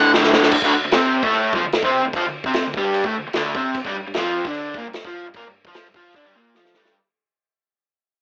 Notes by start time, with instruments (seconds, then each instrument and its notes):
Already playing: overdriven electric guitar D2 A2 D3, lead electric guitar F#5
0.14 overdriven electric guitar D2 A2 D3, snare
0.23 snare
0.33 overdriven electric guitar D2 A2 D3, snare
0.42 snare
0.51 kick, crash
0.62 overdriven electric guitar D2 D3, kick
0.75 overdriven electric guitar D2
0.85 overdriven electric guitar D2
0.92 overdriven electric guitar C3, snare, crash
0.96 overdriven electric guitar C4
1.23 overdriven electric guitar A2 A3, kick
1.33 crash
1.53 overdriven electric guitar F2 F3, kick
1.64 overdriven electric guitar D2
1.72 snare, crash
1.83 overdriven electric guitar C3 C4, kick
2.05 overdriven electric guitar D2
2.13 overdriven electric guitar F2 F3, kick, crash
2.26 overdriven electric guitar D2
2.44 overdriven electric guitar C3 C4, kick
2.54 snare, crash
2.66 overdriven electric guitar D2
2.74 overdriven electric guitar G2 G3, kick
2.94 crash
3.04 overdriven electric guitar A2 A3, kick
3.17 overdriven electric guitar D2
3.27 muted overdriven electric guitar stroke
3.33 overdriven electric guitar D2, snare, crash
3.37 overdriven electric guitar D3
3.55 overdriven electric guitar C3 C4, kick
3.75 kick, crash
3.85 overdriven electric guitar G2 G3, kick
3.96 overdriven electric guitar G2
4.07 overdriven electric guitar G2
4.14 overdriven electric guitar F2, snare, crash
4.18 overdriven electric guitar F3
4.45 overdriven electric guitar D3 D4, kick
4.54 crash
4.74 overdriven electric guitar A#2 A#3, kick
4.86 overdriven electric guitar G2
4.93 snare, crash
5.05 overdriven electric guitar F3 F4, kick
5.26 overdriven electric guitar G2
5.34 overdriven electric guitar A#2 A#3, kick, crash
5.46 overdriven electric guitar G2
5.65 overdriven electric guitar F3 F4, kick
5.74 snare, crash
5.87 overdriven electric guitar G2
5.94 overdriven electric guitar F3 F4, kick
6.13 overdriven electric guitar D3 D4, kick, crash
6.25 overdriven electric guitar G2 G3
6.36 overdriven electric guitar A#2 A#3
6.54 overdriven electric guitar F3 F4, snare
6.65 snare
6.74 overdriven electric guitar G2 G3, snare
6.85 snare